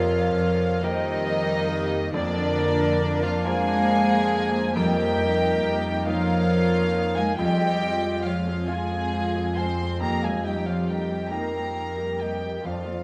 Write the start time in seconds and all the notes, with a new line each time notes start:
Already playing: F2 C3 F3 A#3 F4 A#4 C#5 F5
0.39 A#4
0.83 D#3 G3 A#3 D#4 G4 A#4 C5 D#5
1.26 A#4 G5
1.69 G4 A#4
2.13 F2 D3 F3 A#3 D4 A#4 D5
2.58 F4
3.02 A#4
3.22 F3 F4 D5 F5
3.44 G#3 F4 G#4 A#4 C5 F5 G#5
3.89 A#5
4.32 F5
4.75 F2 F3 G3 D#4 G4 A#4 D#5 G5
5.19 D#4
5.63 A#4
6.06 F3 D#4 F4 A#4 C#5 D#5 F5
6.51 A#5
6.94 D#5
7.16 G#3 G#4 F5 G#5
7.36 F2 F3 G3 G#3 F4 G4 D#5 G5
7.59 C4 G#4
7.81 G#3 F4
8.04 C4 G#4
8.24 F3 G#3 F4 C#5 F5 C6
8.47 C4 G#4
8.68 G#3 F4 G#4 F5 G#5
8.91 C4 G#4
9.13 G#3 F4 C5
9.35 C4 G#4
9.56 G#3 C4 F4 C5 F5 G#5 C6
9.80 C4 G#4
10.00 F2 F3 A#3 D#4 G4 A#4 G5 A#5
10.22 G3 G#3 G4 G#4 F5 G#5
10.44 G3 A#3 D#4 G4 D#5 G5
10.66 F3 G3 F4 G4 C#5 F5
10.88 G3 A#3 D#4 G4 A#4 D#5 G5
11.10 G3 G4
11.31 A#3 D#4 G4 A#4 D#5 G5 A#5
11.55 G3 G4
11.75 A#3 D#4 G5
11.97 G3 G4
12.20 G3 A#3 D#4 G4 D#5 G5
12.41 G3 G4
12.63 F2 F3 D4 F4 C5 D5 F5
12.85 A#3 F4